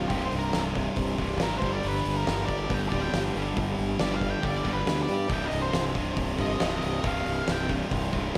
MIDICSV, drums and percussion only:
0, 0, Header, 1, 2, 480
1, 0, Start_track
1, 0, Key_signature, -3, "minor"
1, 0, Tempo, 433839
1, 119, Time_signature, 4, 2, 24, 8
1, 9268, End_track
2, 0, Start_track
2, 0, Title_t, "Drums"
2, 108, Note_on_c, 9, 46, 67
2, 112, Note_on_c, 9, 36, 106
2, 219, Note_off_c, 9, 46, 0
2, 222, Note_off_c, 9, 36, 0
2, 348, Note_on_c, 9, 46, 55
2, 459, Note_off_c, 9, 46, 0
2, 587, Note_on_c, 9, 46, 71
2, 589, Note_on_c, 9, 38, 101
2, 698, Note_off_c, 9, 46, 0
2, 700, Note_off_c, 9, 38, 0
2, 830, Note_on_c, 9, 46, 55
2, 835, Note_on_c, 9, 36, 79
2, 940, Note_off_c, 9, 46, 0
2, 945, Note_off_c, 9, 36, 0
2, 1062, Note_on_c, 9, 46, 80
2, 1073, Note_on_c, 9, 36, 108
2, 1173, Note_off_c, 9, 46, 0
2, 1183, Note_off_c, 9, 36, 0
2, 1307, Note_on_c, 9, 46, 60
2, 1311, Note_on_c, 9, 36, 77
2, 1418, Note_off_c, 9, 46, 0
2, 1421, Note_off_c, 9, 36, 0
2, 1545, Note_on_c, 9, 46, 78
2, 1547, Note_on_c, 9, 38, 110
2, 1656, Note_off_c, 9, 46, 0
2, 1658, Note_off_c, 9, 38, 0
2, 1792, Note_on_c, 9, 36, 103
2, 1795, Note_on_c, 9, 46, 58
2, 1903, Note_off_c, 9, 36, 0
2, 1905, Note_off_c, 9, 46, 0
2, 2026, Note_on_c, 9, 46, 81
2, 2137, Note_off_c, 9, 46, 0
2, 2273, Note_on_c, 9, 46, 62
2, 2383, Note_off_c, 9, 46, 0
2, 2512, Note_on_c, 9, 46, 80
2, 2515, Note_on_c, 9, 38, 100
2, 2623, Note_off_c, 9, 46, 0
2, 2625, Note_off_c, 9, 38, 0
2, 2749, Note_on_c, 9, 36, 88
2, 2751, Note_on_c, 9, 46, 62
2, 2860, Note_off_c, 9, 36, 0
2, 2861, Note_off_c, 9, 46, 0
2, 2985, Note_on_c, 9, 46, 80
2, 2989, Note_on_c, 9, 36, 104
2, 3096, Note_off_c, 9, 46, 0
2, 3100, Note_off_c, 9, 36, 0
2, 3229, Note_on_c, 9, 36, 84
2, 3236, Note_on_c, 9, 46, 61
2, 3340, Note_off_c, 9, 36, 0
2, 3346, Note_off_c, 9, 46, 0
2, 3468, Note_on_c, 9, 46, 76
2, 3471, Note_on_c, 9, 38, 114
2, 3579, Note_off_c, 9, 46, 0
2, 3581, Note_off_c, 9, 38, 0
2, 3712, Note_on_c, 9, 46, 58
2, 3823, Note_off_c, 9, 46, 0
2, 3948, Note_on_c, 9, 36, 112
2, 3952, Note_on_c, 9, 46, 72
2, 4059, Note_off_c, 9, 36, 0
2, 4062, Note_off_c, 9, 46, 0
2, 4185, Note_on_c, 9, 46, 57
2, 4296, Note_off_c, 9, 46, 0
2, 4418, Note_on_c, 9, 46, 72
2, 4420, Note_on_c, 9, 38, 104
2, 4528, Note_off_c, 9, 46, 0
2, 4530, Note_off_c, 9, 38, 0
2, 4662, Note_on_c, 9, 36, 80
2, 4667, Note_on_c, 9, 46, 53
2, 4773, Note_off_c, 9, 36, 0
2, 4778, Note_off_c, 9, 46, 0
2, 4905, Note_on_c, 9, 36, 111
2, 4911, Note_on_c, 9, 46, 71
2, 5016, Note_off_c, 9, 36, 0
2, 5022, Note_off_c, 9, 46, 0
2, 5144, Note_on_c, 9, 36, 79
2, 5148, Note_on_c, 9, 46, 54
2, 5255, Note_off_c, 9, 36, 0
2, 5259, Note_off_c, 9, 46, 0
2, 5389, Note_on_c, 9, 46, 80
2, 5391, Note_on_c, 9, 38, 109
2, 5500, Note_off_c, 9, 46, 0
2, 5502, Note_off_c, 9, 38, 0
2, 5622, Note_on_c, 9, 46, 60
2, 5733, Note_off_c, 9, 46, 0
2, 5855, Note_on_c, 9, 46, 79
2, 5860, Note_on_c, 9, 36, 113
2, 5966, Note_off_c, 9, 46, 0
2, 5971, Note_off_c, 9, 36, 0
2, 6100, Note_on_c, 9, 46, 63
2, 6211, Note_off_c, 9, 46, 0
2, 6342, Note_on_c, 9, 46, 78
2, 6344, Note_on_c, 9, 38, 109
2, 6453, Note_off_c, 9, 46, 0
2, 6455, Note_off_c, 9, 38, 0
2, 6580, Note_on_c, 9, 46, 62
2, 6584, Note_on_c, 9, 36, 92
2, 6691, Note_off_c, 9, 46, 0
2, 6695, Note_off_c, 9, 36, 0
2, 6825, Note_on_c, 9, 36, 112
2, 6829, Note_on_c, 9, 46, 82
2, 6936, Note_off_c, 9, 36, 0
2, 6940, Note_off_c, 9, 46, 0
2, 7065, Note_on_c, 9, 36, 85
2, 7070, Note_on_c, 9, 46, 62
2, 7176, Note_off_c, 9, 36, 0
2, 7180, Note_off_c, 9, 46, 0
2, 7303, Note_on_c, 9, 46, 82
2, 7305, Note_on_c, 9, 38, 112
2, 7414, Note_off_c, 9, 46, 0
2, 7416, Note_off_c, 9, 38, 0
2, 7543, Note_on_c, 9, 46, 61
2, 7654, Note_off_c, 9, 46, 0
2, 7783, Note_on_c, 9, 46, 77
2, 7790, Note_on_c, 9, 36, 108
2, 7894, Note_off_c, 9, 46, 0
2, 7900, Note_off_c, 9, 36, 0
2, 8035, Note_on_c, 9, 46, 60
2, 8145, Note_off_c, 9, 46, 0
2, 8271, Note_on_c, 9, 46, 77
2, 8273, Note_on_c, 9, 38, 109
2, 8381, Note_off_c, 9, 46, 0
2, 8384, Note_off_c, 9, 38, 0
2, 8513, Note_on_c, 9, 36, 90
2, 8517, Note_on_c, 9, 46, 56
2, 8624, Note_off_c, 9, 36, 0
2, 8628, Note_off_c, 9, 46, 0
2, 8755, Note_on_c, 9, 36, 112
2, 8759, Note_on_c, 9, 46, 80
2, 8866, Note_off_c, 9, 36, 0
2, 8869, Note_off_c, 9, 46, 0
2, 8995, Note_on_c, 9, 36, 83
2, 9003, Note_on_c, 9, 46, 56
2, 9106, Note_off_c, 9, 36, 0
2, 9114, Note_off_c, 9, 46, 0
2, 9268, End_track
0, 0, End_of_file